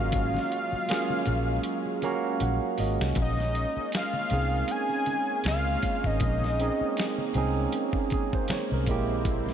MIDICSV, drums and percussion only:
0, 0, Header, 1, 2, 480
1, 0, Start_track
1, 0, Key_signature, -5, "minor"
1, 0, Tempo, 759494
1, 82, Time_signature, 4, 2, 24, 8
1, 6027, End_track
2, 0, Start_track
2, 0, Title_t, "Drums"
2, 77, Note_on_c, 9, 42, 95
2, 81, Note_on_c, 9, 36, 116
2, 85, Note_on_c, 9, 62, 33
2, 85, Note_on_c, 9, 64, 76
2, 140, Note_off_c, 9, 42, 0
2, 144, Note_off_c, 9, 36, 0
2, 148, Note_off_c, 9, 62, 0
2, 148, Note_off_c, 9, 64, 0
2, 215, Note_on_c, 9, 62, 28
2, 215, Note_on_c, 9, 63, 61
2, 232, Note_on_c, 9, 38, 36
2, 278, Note_off_c, 9, 62, 0
2, 278, Note_off_c, 9, 63, 0
2, 295, Note_off_c, 9, 38, 0
2, 327, Note_on_c, 9, 42, 57
2, 390, Note_off_c, 9, 42, 0
2, 457, Note_on_c, 9, 63, 39
2, 520, Note_off_c, 9, 63, 0
2, 558, Note_on_c, 9, 62, 31
2, 561, Note_on_c, 9, 42, 82
2, 577, Note_on_c, 9, 38, 101
2, 621, Note_off_c, 9, 62, 0
2, 624, Note_off_c, 9, 42, 0
2, 640, Note_off_c, 9, 38, 0
2, 696, Note_on_c, 9, 63, 61
2, 760, Note_off_c, 9, 63, 0
2, 793, Note_on_c, 9, 42, 59
2, 801, Note_on_c, 9, 64, 71
2, 856, Note_off_c, 9, 42, 0
2, 864, Note_off_c, 9, 64, 0
2, 1033, Note_on_c, 9, 42, 82
2, 1097, Note_off_c, 9, 42, 0
2, 1173, Note_on_c, 9, 62, 30
2, 1236, Note_off_c, 9, 62, 0
2, 1277, Note_on_c, 9, 42, 58
2, 1279, Note_on_c, 9, 63, 57
2, 1340, Note_off_c, 9, 42, 0
2, 1343, Note_off_c, 9, 63, 0
2, 1518, Note_on_c, 9, 42, 68
2, 1520, Note_on_c, 9, 63, 72
2, 1581, Note_off_c, 9, 42, 0
2, 1583, Note_off_c, 9, 63, 0
2, 1755, Note_on_c, 9, 46, 48
2, 1758, Note_on_c, 9, 64, 66
2, 1818, Note_off_c, 9, 46, 0
2, 1821, Note_off_c, 9, 64, 0
2, 1904, Note_on_c, 9, 38, 86
2, 1967, Note_off_c, 9, 38, 0
2, 1992, Note_on_c, 9, 42, 90
2, 1997, Note_on_c, 9, 36, 115
2, 2002, Note_on_c, 9, 64, 75
2, 2055, Note_off_c, 9, 42, 0
2, 2061, Note_off_c, 9, 36, 0
2, 2065, Note_off_c, 9, 64, 0
2, 2131, Note_on_c, 9, 63, 59
2, 2150, Note_on_c, 9, 38, 32
2, 2195, Note_off_c, 9, 63, 0
2, 2214, Note_off_c, 9, 38, 0
2, 2243, Note_on_c, 9, 42, 60
2, 2306, Note_off_c, 9, 42, 0
2, 2479, Note_on_c, 9, 42, 74
2, 2495, Note_on_c, 9, 38, 102
2, 2542, Note_off_c, 9, 42, 0
2, 2558, Note_off_c, 9, 38, 0
2, 2613, Note_on_c, 9, 62, 26
2, 2613, Note_on_c, 9, 63, 56
2, 2677, Note_off_c, 9, 62, 0
2, 2677, Note_off_c, 9, 63, 0
2, 2717, Note_on_c, 9, 42, 59
2, 2723, Note_on_c, 9, 64, 70
2, 2780, Note_off_c, 9, 42, 0
2, 2786, Note_off_c, 9, 64, 0
2, 2957, Note_on_c, 9, 42, 80
2, 3020, Note_off_c, 9, 42, 0
2, 3093, Note_on_c, 9, 62, 31
2, 3156, Note_off_c, 9, 62, 0
2, 3199, Note_on_c, 9, 42, 54
2, 3203, Note_on_c, 9, 63, 54
2, 3262, Note_off_c, 9, 42, 0
2, 3266, Note_off_c, 9, 63, 0
2, 3437, Note_on_c, 9, 42, 67
2, 3443, Note_on_c, 9, 63, 68
2, 3451, Note_on_c, 9, 38, 99
2, 3500, Note_off_c, 9, 42, 0
2, 3506, Note_off_c, 9, 63, 0
2, 3515, Note_off_c, 9, 38, 0
2, 3580, Note_on_c, 9, 62, 31
2, 3643, Note_off_c, 9, 62, 0
2, 3682, Note_on_c, 9, 42, 63
2, 3685, Note_on_c, 9, 36, 88
2, 3745, Note_off_c, 9, 42, 0
2, 3748, Note_off_c, 9, 36, 0
2, 3819, Note_on_c, 9, 36, 81
2, 3882, Note_off_c, 9, 36, 0
2, 3917, Note_on_c, 9, 42, 90
2, 3923, Note_on_c, 9, 36, 122
2, 3928, Note_on_c, 9, 62, 33
2, 3928, Note_on_c, 9, 64, 71
2, 3981, Note_off_c, 9, 42, 0
2, 3986, Note_off_c, 9, 36, 0
2, 3991, Note_off_c, 9, 62, 0
2, 3991, Note_off_c, 9, 64, 0
2, 4055, Note_on_c, 9, 62, 25
2, 4055, Note_on_c, 9, 63, 57
2, 4072, Note_on_c, 9, 38, 34
2, 4118, Note_off_c, 9, 62, 0
2, 4118, Note_off_c, 9, 63, 0
2, 4135, Note_off_c, 9, 38, 0
2, 4169, Note_on_c, 9, 42, 57
2, 4232, Note_off_c, 9, 42, 0
2, 4405, Note_on_c, 9, 42, 78
2, 4421, Note_on_c, 9, 38, 103
2, 4468, Note_off_c, 9, 42, 0
2, 4484, Note_off_c, 9, 38, 0
2, 4539, Note_on_c, 9, 63, 56
2, 4603, Note_off_c, 9, 63, 0
2, 4640, Note_on_c, 9, 42, 58
2, 4646, Note_on_c, 9, 64, 70
2, 4703, Note_off_c, 9, 42, 0
2, 4709, Note_off_c, 9, 64, 0
2, 4882, Note_on_c, 9, 42, 83
2, 4889, Note_on_c, 9, 62, 29
2, 4945, Note_off_c, 9, 42, 0
2, 4952, Note_off_c, 9, 62, 0
2, 5012, Note_on_c, 9, 36, 83
2, 5075, Note_off_c, 9, 36, 0
2, 5121, Note_on_c, 9, 42, 51
2, 5125, Note_on_c, 9, 63, 53
2, 5134, Note_on_c, 9, 36, 93
2, 5184, Note_off_c, 9, 42, 0
2, 5189, Note_off_c, 9, 63, 0
2, 5197, Note_off_c, 9, 36, 0
2, 5266, Note_on_c, 9, 36, 94
2, 5329, Note_off_c, 9, 36, 0
2, 5359, Note_on_c, 9, 42, 67
2, 5369, Note_on_c, 9, 62, 32
2, 5369, Note_on_c, 9, 63, 74
2, 5373, Note_on_c, 9, 38, 95
2, 5422, Note_off_c, 9, 42, 0
2, 5432, Note_off_c, 9, 62, 0
2, 5432, Note_off_c, 9, 63, 0
2, 5437, Note_off_c, 9, 38, 0
2, 5507, Note_on_c, 9, 62, 31
2, 5570, Note_off_c, 9, 62, 0
2, 5602, Note_on_c, 9, 42, 66
2, 5608, Note_on_c, 9, 36, 98
2, 5666, Note_off_c, 9, 42, 0
2, 5671, Note_off_c, 9, 36, 0
2, 5846, Note_on_c, 9, 42, 90
2, 5847, Note_on_c, 9, 36, 123
2, 5855, Note_on_c, 9, 62, 34
2, 5855, Note_on_c, 9, 64, 70
2, 5909, Note_off_c, 9, 42, 0
2, 5910, Note_off_c, 9, 36, 0
2, 5918, Note_off_c, 9, 62, 0
2, 5918, Note_off_c, 9, 64, 0
2, 5980, Note_on_c, 9, 63, 57
2, 5996, Note_on_c, 9, 38, 35
2, 6027, Note_off_c, 9, 38, 0
2, 6027, Note_off_c, 9, 63, 0
2, 6027, End_track
0, 0, End_of_file